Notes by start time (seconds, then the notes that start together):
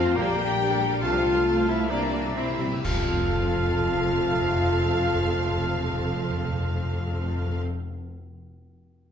Already playing: F2 F3 C4 F4 C5 F5 A5
0.03 A3 F4 A4 C5
0.16 A#1 A#2 G3 A#3 G4 A#4 D5 G5 A#5
0.26 A#3 A#4 D5
0.31 G3
0.37 G3 G4 A#4
0.45 A#3 D4 A#4 D5
0.58 G3 G4 A#4
0.69 A#3 A#4 D5
0.73 G4
0.80 G3 G4 A#4
0.88 A#3 A#4 D5
1.01 C2 C3 A3 C4 F4 A4 F5 A5
1.12 A3 C5 F5
1.17 A3
1.23 C4 A4 A5
1.34 A3 C5 F5
1.45 A3 C4 A4 A5
1.57 A3 C5 F5
1.61 F4
1.67 C4 E4 A4 E5 A5
1.76 A4 C5 F5
1.80 A3
1.89 C3 E3 A#3 C4 D4 G4 D5 E5 A#5
1.97 C3
2.01 C3 A#3 E4 E5
2.06 A#3
2.13 C4 G4 D5
2.20 C3 E4
2.24 C3 A#3 E4 E5
2.35 C3 C4 E4 G4 D5 E5
2.42 C3
2.47 C3 A#3 E4 E5
2.52 A#4
2.58 C3 C4 G4 D5
2.67 C3 G4
2.71 C3 A#3 E4 E5
2.84 F1 F2 F3 A3 C4 F4 A4 F5 A5, concert bass drum, crash
2.92 F2 C4
2.99 F2 F4
3.06 F2 A4
3.13 F2 F5
3.23 F2
3.30 F2
3.37 F2
3.45 F2
3.52 F2
3.59 F2
3.67 F2
3.75 F2
3.82 F2
3.90 F2
3.97 F2
4.04 F2
4.11 F2
4.19 F2
4.26 F2
4.33 F2
4.41 F2
4.49 F2
4.56 F2
4.63 F2
4.70 F2
4.78 F2
4.86 F2
4.93 F2
5.00 F2
5.08 F2
5.15 F2
5.23 F2
5.31 F2
5.38 F2
5.45 F2
5.52 F2
5.60 F2
5.68 F2
5.76 F2
5.83 F2
5.92 F2
6.00 F2
6.07 F2
6.14 F2
6.22 F2
6.30 F2
6.37 F2
6.45 F2
6.52 F2
6.60 F2
6.68 F2
6.76 F2
6.83 F2
6.93 F2
7.00 F2
7.08 F2
7.16 F2
7.24 F2
7.32 F2
7.39 F2
7.46 F2
7.54 F2